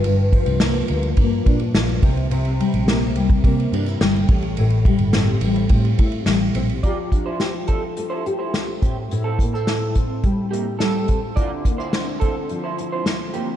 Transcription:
<<
  \new Staff \with { instrumentName = "Clean electric guitar" } { \time 4/4 \key a \phrygian \tempo 4 = 106 r1 | r1 | r1 | <f' d''>16 r8 <e' c''>8 r16 <c' a'>16 r8 <e' c''>16 r16 <e' c''>16 r8 <c' g'>16 r16 |
r16 <c' a'>16 r16 <c' a'>8. r4 <bes g'>16 r16 <c' a'>8. r16 | <f' d''>16 r8 <e' c''>8 r16 <c' a'>16 r8 <e' c''>16 r16 <e' c''>16 r8 <bes g'>16 r16 | }
  \new Staff \with { instrumentName = "Nylon-string guitar" } { \time 4/4 \key a \phrygian g,8 f8 bes8 f8 bes8 d'8 f8 c8 | c8 g8 bes8 g8 bes8 d'16 e'16 g8 a,8 | a,8 g8 c'8 g8 c'8 e'8 g8 c'8 | <f g'>8 d'8 g'8 d'8 a8 g'8 a8 a,8 |
<a, e'>8 bes16 c'16 e'8 c'8 g8 e'8 g8 c'8 | <d e'>8 bes16 c'16 e'8 c'8 f8 e'8 f8 c'8 | }
  \new Staff \with { instrumentName = "Fingered electric bass" } { \clef bass \time 4/4 \key a \phrygian g,,8. c,8. d,8 g,8 bes,8 bes,,8 c,8~ | c,8. bes,,8. c,8 c8 g,8 g,,8 a,,8~ | a,,8. g,,8. a,,8 a,8 a,8 a,,8 bes,,8 | r1 |
r1 | r1 | }
  \new DrumStaff \with { instrumentName = "Drums" } \drummode { \time 4/4 cymr8 <bd cymr>16 cymr16 <cymr sn>8 cymr16 cymr16 <bd cymr>8 <bd cymr>16 cymr16 <cymr sn>8 <bd cymr>16 cymr16 | cymr16 cymr16 cymr16 cymr16 <cymr sn>8 cymr16 <bd cymr>16 <bd cymr>16 cymr16 cymr16 cymr16 <cymr sn>16 cymr16 <bd cymr>16 cymr16 | cymr16 cymr16 <bd cymr>16 cymr16 <cymr sn>8 cymr16 cymr16 <bd cymr>16 cymr16 <bd cymr>16 cymr16 <cymr sn>8 cymr16 cymr16 | <hh bd>8 <hh bd>8 <hh sn>8 <hh bd>8 hh8 hh8 <hh sn>8 <hh bd>8 |
hh8 <hh bd>8 <hh sn>8 <hh bd>8 <hh bd>8 hh8 <hh sn>8 <hh bd>8 | <hh bd>8 <hh bd>8 <hh sn>8 <hh bd>8 hh8 hh8 <hh sn>8 hh8 | }
>>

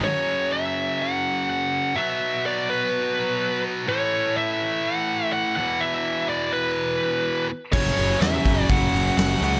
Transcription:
<<
  \new Staff \with { instrumentName = "Lead electric guitar" } { \time 4/4 \key fis \minor \tempo 4 = 125 cis''4 e''4 fis''4 fis''4 | e''4 d''8 b'2 r8 | cis''4 e''4 fis''4 fis''8 fis''8 | e''4 d''8 b'2 r8 |
cis''4 e''4 fis''4 fis''8 fis''8 | }
  \new Staff \with { instrumentName = "Distorted electric guitar" } { \clef bass \time 4/4 \key fis \minor <fis, cis fis>1 | <b, fis b>1 | <a, e a>2.~ <a, e a>8 <e, b, e>8~ | <e, b, e>2.~ <e, b, e>8 r8 |
<fis, cis fis>1 | }
  \new Staff \with { instrumentName = "Distorted electric guitar" } { \clef bass \time 4/4 \key fis \minor r1 | r1 | r1 | r1 |
<fis, cis fis>2.~ <fis, cis fis>8 <fis, cis fis>8 | }
  \new Staff \with { instrumentName = "Distorted electric guitar" } { \clef bass \time 4/4 \key fis \minor r1 | r1 | r1 | r1 |
<fis, cis fis>2 <fis, cis fis>2 | }
  \new Staff \with { instrumentName = "Picked electric bass" } { \clef bass \time 4/4 \key fis \minor r1 | r1 | r1 | r1 |
fis,,8 fis,,8 e,8 fis,,8 fis,,8 fis,,8 fis,,8 cis,8 | }
  \new DrumStaff \with { instrumentName = "Drums" } \drummode { \time 4/4 r4 r4 r4 r4 | r4 r4 r4 r4 | r4 r4 r4 r4 | r4 r4 r4 r4 |
<cymc bd>16 sn16 hho8 <hho sn>8 <hho bd>8 <hho bd>8 hho8 <hho sn>8 hho8 | }
>>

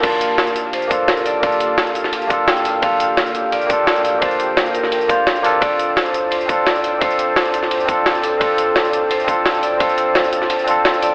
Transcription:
<<
  \new Staff \with { instrumentName = "Analog synth pad" } { \time 4/4 \key g \minor \tempo 4 = 172 << { a''1~ | a''1 | g''1~ | g''1 |
a''1~ | a''1~ | a''1~ | a''1 | } \\ { <bes g' f''>1~ | <bes g' f''>1~ | <bes g' f''>1~ | <bes g' f''>1 |
<f' c'' d''>1~ | <f' c'' d''>1~ | <f' c'' d''>1~ | <f' c'' d''>1 | } >> }
  \new Staff \with { instrumentName = "Vibraphone" } { \time 4/4 \key g \minor bes'4. r8 c''4 bes'8 d''8~ | d''4. r4. g''4 | f''2 d''2 | c''4. bes'4 f''4. |
d''4 c''4 c''4 d''4 | c''2. r8 a'8~ | a'2 c''4 r8 d''8 | c''2. r8 d''8 | }
  \new Staff \with { instrumentName = "Tine electric piano" } { \time 4/4 \key g \minor <bes d' f' a''>2~ <bes d' f' a''>8 <bes d' f' a'>4. | <bes d' f' a'>2~ <bes d' f' a'>8 <bes d' f' a'>4. | <bes d' f' a'>2~ <bes d' f' a'>8 <bes d' f' a'>4. | <bes d' f' a''>2~ <bes d' f' a''>8 <bes d' f' c''>4 <bes d' f' a'>8 |
<c' d' f' a'>2~ <c' d' f' a'>8 <c' d' f' a'>4. | <c' d' f' a'>2~ <c' d' f' a'>8 <c' d' f' a'>4. | <c' d' f' a'>2~ <c' d' f' a'>8 <c' d' f' a'>4. | <c' d' f' a'>2~ <c' d' f' a'>8 <c' d' f' a'>4. | }
  \new Staff \with { instrumentName = "Sub bass" } { \clef bass \time 4/4 \key g \minor g,,4. f,,2~ f,,8 | g,,8 g,,4 f,,2~ f,,8 | g,,4. f,,2~ f,,8 | g,,8 g,,4 f,,4~ f,,16 d,8 r8. |
d,,4. c,2~ c,8 | d,,8 d,,4 c,2~ c,8 | d,,4. c,2~ c,8 | d,,8 d,,4 c,8 r2 | }
  \new DrumStaff \with { instrumentName = "Drums" } \drummode { \time 4/4 <cymc hh bd cymr>8 <hh cymr tamb>8 <hh cymr sn>16 tamb16 <hh cymr tamb>8 <hh cymr>16 tamb16 <hh bd cymr tamb>8 <hh cymr sn>16 tamb16 <hho cymr tamb>8 | <hh bd cymr>16 tamb16 <hh cymr tamb>8 <hh cymr sn>16 tamb16 <hh cymr tamb>16 sn16 <hh cymr>16 tamb16 <hh bd cymr tamb>8 <hh cymr sn>16 tamb16 <hho cymr tamb>8 | <hh bd cymr>8 <hh cymr tamb>8 <hh cymr sn>16 tamb16 <hh cymr tamb>8 <hh cymr>16 tamb16 <hh bd cymr tamb>8 <hh cymr sn>16 tamb16 <hho cymr tamb>8 | <hh bd cymr>16 tamb16 <hh cymr tamb>8 <hh cymr sn>16 tamb16 <hh cymr tamb>16 sn16 <hh cymr>16 tamb16 <hh bd cymr tamb>8 <hh cymr sn>16 tamb16 <hho cymr tamb>8 |
<hh bd cymr>8 <hh cymr tamb>8 <hh cymr sn>16 tamb16 <hh cymr tamb>8 <hh cymr>16 tamb16 <hh bd cymr tamb>8 <hh cymr sn>16 tamb16 <hho cymr tamb>8 | <hh bd cymr>16 tamb16 <hh cymr tamb>8 <hh cymr sn>16 tamb16 <hh cymr tamb>16 sn16 <hh cymr>16 tamb16 <hh bd cymr tamb>8 <hh cymr sn>16 tamb16 <hho cymr tamb>8 | <hh bd cymr>8 <hh cymr tamb>8 <hh cymr sn>16 tamb16 <hh cymr tamb>8 <hh cymr>16 tamb16 <hh bd cymr tamb>8 <hh cymr sn>16 tamb16 <hho cymr tamb>8 | <hh bd cymr>16 tamb16 <hh cymr tamb>8 <hh cymr sn>16 tamb16 <hh cymr tamb>16 sn16 <hh cymr>16 tamb16 <hh cymr tamb>8 <hh cymr sn>16 tamb16 <hho cymr tamb>8 | }
>>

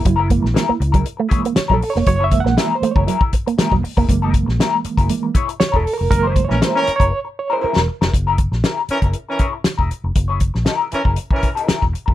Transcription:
<<
  \new Staff \with { instrumentName = "Hollow-body jazz guitar" } { \time 4/4 \key fis \mixolydian \tempo 4 = 119 r16 <e' gis' ais'>16 r8 <e' gis' ais'>16 r8 <e' gis' ais'>16 r8 <e' gis' cis''>16 r8 <e' gis' ais'>16 r8 | r16 <e' gis' cis''>16 r8 <e' gis' ais'>16 r8 <e' gis' ais'>16 <e' gis' ais'>8 r8 <e' gis' ais'>16 r8 <e' gis' ais'>16 | r16 <e' gis' ais'>8 r16 <e' gis' ais'>16 r8 <e' gis' ais'>16 r8 <e' gis' cis''>16 r8 <e' gis' ais'>16 r8 | r16 <e' gis' cis''>8 r16 <e' gis' ais'>16 r8 <e' gis' ais'>16 r8. <e' gis' ais'>16 <e' gis' ais'>16 r8 <e' gis' ais'>16 |
r16 <e' gis' ais'>16 r8 <e' gis' ais'>16 r8 <e' gis' ais'>16 r8 <e' gis' cis''>16 r8 <e' gis' ais'>16 r8 | r16 <e' gis' cis''>16 r8 <e' gis' ais'>8 r16 <e' gis' ais'>16 r8. <e' gis' ais'>16 <e' gis' ais'>16 r8 <e' gis' ais'>16 | }
  \new Staff \with { instrumentName = "Reed electric piano" } { \time 4/4 \key fis \mixolydian e'4.~ e'16 r4 r16 \tuplet 3/2 { cis''8 a'8 cis''8 } | \tuplet 3/2 { cis''8 e''8 fis''8 e''8 bis'8 cis''8~ } cis''16 r4. r16 | r2. \tuplet 3/2 { cis''8 a'8 ais'8 } | \tuplet 3/2 { ais'8 bis'8 cis''8 bis'8 cis''8 cis''8~ } cis''16 r16 cis''16 bis'16 ais'8 r8 |
r1 | r1 | }
  \new Staff \with { instrumentName = "Reed electric piano" } { \clef bass \time 4/4 \key fis \mixolydian r8 <e gis ais>8 r4. <e gis ais>8 r4 | r8 <e gis ais>4. r4 <e gis ais>8 r8 | <e gis ais>2 <e gis ais>8 r4. | <e gis ais>4. r2 r8 |
r1 | r1 | }
  \new Staff \with { instrumentName = "Horn section" } { \time 4/4 \key fis \mixolydian r1 | r1 | r1 | r8. <e cis' ais'>16 r16 <e cis' ais'>8 r2 r16 |
r4. <e cis' ais'>16 r8 <e cis' ais'>8 r4 r16 | r4. <e cis' ais'>16 r8 <e cis' ais'>8 r4 r16 | }
  \new Staff \with { instrumentName = "Clean electric guitar" } { \time 4/4 \key fis \mixolydian fis16 r16 ais16 r8 ais16 r16 fis16 r16 a16 r16 ais16 r16 fis16 r16 ais16 | fis16 r8 ais16 r8 a16 r16 fis16 r8 ais16 r16 fis16 r16 ais16 | r1 | r1 |
r1 | r1 | }
  \new Staff \with { instrumentName = "Fingered electric bass" } { \clef bass \time 4/4 \key fis \mixolydian fis,,8. ais,,16 r8 cis,8 r4 r16 ais,,16 r16 eis,,16 | fis,,8. ais,,16 r8. fis,,16 r4 r16 e,,16 r16 eis,,16 | fis,,8. ais,,16 r8. fis,,16 r4 r16 e,,16 r16 eis,,16 | fis,,8. ais,,16 r8. fis,,16 r4 r16 e,,16 r16 eis,,16 |
fis,,8. ais,,16 r8. fis,,16 r4 r16 e,,16 r16 eis,,16 | fis,,8. ais,,16 r8. fis,,16 r4 r16 e,,16 r16 eis,,16 | }
  \new DrumStaff \with { instrumentName = "Drums" } \drummode { \time 4/4 <hh bd>8 <hh bd>16 sn16 <hh sn>8 hh16 <hh bd>16 hh8 <hh bd>16 hh16 <hh sn>16 bd16 hho16 sn16 | <hh bd>8 <hh bd>16 sn16 <hh sn>8 hh16 bd16 hh16 bd16 <hh bd>16 hh16 <hh sn>16 bd16 hho16 bd16 | <hh bd>8 <hh bd>16 sn16 <hh sn>8 hh16 <hh bd>16 hh8 <hh bd>16 hh16 <hh sn>16 bd16 hho8 | <hh bd>8 <hh bd>16 sn16 <hh sn>8 hh16 <hh bd>16 r4 r16 sn8 sn16 |
<hh bd>8 <hh bd>16 sn16 <hh sn>8 hh16 <hh bd>16 hh8 <hh bd>8 <hh sn>16 bd16 hh8 | <hh bd>8 <hh bd>16 sn16 <hh sn>8 hh16 bd16 hh16 bd16 <hh bd>16 hh16 <hh sn>16 bd16 hh16 bd16 | }
>>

